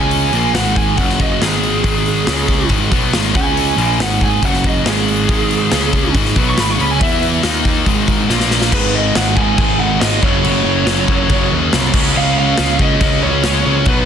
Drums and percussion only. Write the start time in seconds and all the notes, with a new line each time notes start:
0.11 open hi-hat
0.33 open hi-hat
0.55 snare, open hi-hat
0.76 kick, open hi-hat
0.98 kick, open hi-hat
1.09 snare
1.20 kick, open hi-hat
1.42 snare, open hi-hat
1.53 snare
1.63 open hi-hat
1.84 kick, open hi-hat
2.06 open hi-hat
2.27 snare, open hi-hat
2.48 kick, open hi-hat
2.69 kick, open hi-hat
2.92 kick, open hi-hat
3.13 snare, open hi-hat
3.25 snare
3.35 kick, open hi-hat
3.57 open hi-hat
3.78 open hi-hat
4.00 snare, open hi-hat
4.21 kick, open hi-hat
4.43 kick, open hi-hat
4.54 snare
4.64 kick, open hi-hat
4.86 snare, open hi-hat
5.08 open hi-hat
5.29 kick, open hi-hat
5.51 open hi-hat
5.71 snare, open hi-hat
5.93 kick, open hi-hat
6.15 kick, open hi-hat
6.25 snare
6.36 kick, open hi-hat
6.58 snare, open hi-hat
6.69 snare
6.80 open hi-hat
7.01 kick, open hi-hat
7.23 open hi-hat
7.43 snare, open hi-hat
7.65 kick, open hi-hat
7.86 kick, open hi-hat
8.08 kick, open hi-hat
8.30 snare
8.40 snare
8.51 snare
8.62 snare
8.72 kick, crash
9.15 snare, crash
9.37 kick
9.58 kick, crash
10.01 snare, crash
10.23 kick
10.44 crash
10.87 snare, crash
11.08 kick
11.30 kick, crash
11.73 snare, crash
11.94 kick, crash
12.16 crash
12.57 snare, crash
12.79 kick
13.01 kick, crash
13.44 snare, crash
13.85 kick, crash